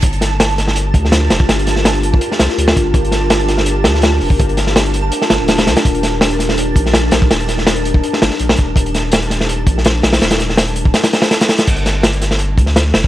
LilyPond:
<<
  \new Staff \with { instrumentName = "Synth texture" } { \time 4/4 \key g \minor \tempo 4 = 165 a''1~ | a''1~ | a''1~ | a''1~ |
a''1~ | a''1~ | a''1~ | a''1 |
r1 | }
  \new Staff \with { instrumentName = "Ambient pad" } { \time 4/4 \key g \minor << { <d' g' bes'>1~ | <d' g' bes'>1~ | <d' g' bes'>1~ | <d' g' bes'>1~ |
<d' g' bes'>1~ | <d' g' bes'>1~ | <d' g' bes'>1~ | <d' g' bes'>1 |
r1 | } \\ { f'1~ | f'1~ | f'1~ | f'1 |
ees'1~ | ees'1~ | ees'1~ | ees'1 |
r1 | } >> }
  \new Staff \with { instrumentName = "Sub bass" } { \clef bass \time 4/4 \key g \minor g,,2~ g,,8 d,4 f,,8 | g,,2 r8 c,16 r16 d,8 g,,8 | g,,2~ g,,8 d,4 f,,8 | g,,2 r8 g,,16 d,,8. c,16 r16 |
ees,,2~ ees,,8 bes,,4 bes,,8 | ees,,2 r8 g,,16 r16 bes,,8 ees,,8 | ees,,2~ ees,,8 bes,,4 bes,,8 | ees,,2 r2 |
g,,2~ g,,8 d,4 f,,8 | }
  \new DrumStaff \with { instrumentName = "Drums" } \drummode { \time 4/4 <hh bd>16 hh16 <hh sn>8 <hh sn>16 hh16 <hh sn>16 sn16 hh8 <hh bd>16 sn16 <hh sn>8 <hh sn>16 bd16 | <hh sn>16 hh16 <hh sn>16 sn16 <hh sn>16 hh16 hh16 bd16 hh16 sn16 <hh sn>16 sn16 hh16 sn16 <hh bd>8 | <hh bd>16 hh16 <hh sn>8 <hh sn>16 hh16 <hh sn>16 sn16 hh8 <hh sn>16 sn16 <hh sn>8 hho16 bd16 | <hh bd>16 hh16 <hh sn>16 sn16 <hh sn>16 hh16 hh8 hh16 sn16 <hh sn>8 <hh sn>16 <hh sn>16 <hh sn>16 <hh sn>16 |
<hh bd>16 hh16 <hh sn>8 <hh sn>16 hh16 <hh sn>16 sn16 hh8 <hh bd>16 sn16 <hh sn>8 <hh sn>16 bd16 | <hh sn>16 hh16 <hh sn>16 sn16 <hh sn>16 hh16 hh16 bd16 hh16 sn16 <hh sn>16 sn16 hh16 sn16 <hh bd>8 | <hh bd>16 hh16 <hh sn>8 <hh sn>16 hh16 <hh sn>16 sn16 hh8 <hh bd>16 sn16 <hh sn>8 <hh sn>16 <hh sn>16 | <hh sn>16 <hh sn>16 <hh sn>16 sn16 <hh sn>16 hh16 hh16 bd16 <hh sn>16 <hh sn>16 <hh sn>16 <hh sn>16 <hh sn>16 <hh sn>16 <hh sn>16 <hh sn>16 |
<cymc hh bd>16 hh16 <hh sn>8 <hh sn>16 hh16 <hh sn>16 sn16 hh8 <hh bd>16 sn16 <hh sn>8 <hh sn>16 bd16 | }
>>